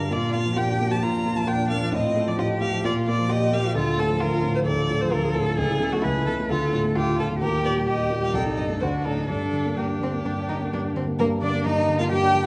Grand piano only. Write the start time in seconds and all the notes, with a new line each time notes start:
Already playing: G2 D3 D4
0.00 G3
0.11 A#2
0.22 D4
0.34 A#3
0.46 F3
0.57 A#2
0.68 D4
0.80 A#3
0.91 F3
1.02 A#2
1.13 D4
1.24 A#3
1.35 F3
1.47 A#2
1.58 D4
1.71 A#3
1.81 F3
1.92 A2
2.04 F4
2.16 A3
2.27 F3
2.39 A2
2.50 F4
2.61 A3
2.73 F3
2.84 A#2
2.96 F4
3.07 A#3
3.19 F3
3.29 A#2
3.41 F4
3.52 A#3
3.64 F3
3.75 D2
3.87 F4
3.98 A2
4.09 F3
4.21 D2
4.34 F4
4.44 A2
4.56 F3
4.68 D2
4.78 F4
4.90 A2
5.02 F3
5.13 D2
5.23 F4
5.36 A2
5.47 F3
5.58 C#2
5.70 E4
5.80 C#3
5.93 A3
6.05 C#2
6.17 E4
6.28 C#3
6.39 A3
6.50 D2
6.62 F4
6.73 A2
6.84 A3
6.95 D2
7.07 F4
7.19 A2
7.31 A3
7.41 D#2
7.52 G4
7.65 A#2
7.75 G3
7.87 D#2
7.99 G4
8.10 A#2
8.21 G3
8.34 C2
8.46 D#4
8.57 G2
8.69 A3
8.82 D2
8.94 D4
9.06 A2
9.17 A3
9.30 G2
9.42 D4
9.53 D3
9.66 A#3
9.76 G2
9.88 D4
10.00 D3
10.13 A#3
10.24 G2
10.38 D4
10.49 D3
10.62 A#3
10.73 G2
10.85 D4
10.96 D3
11.07 A#3
11.20 G2
11.31 D4
11.42 D3
11.54 A#3
11.66 G2
11.77 D4
11.89 D3
12.00 A#3
12.11 G2
12.23 D4
12.34 D3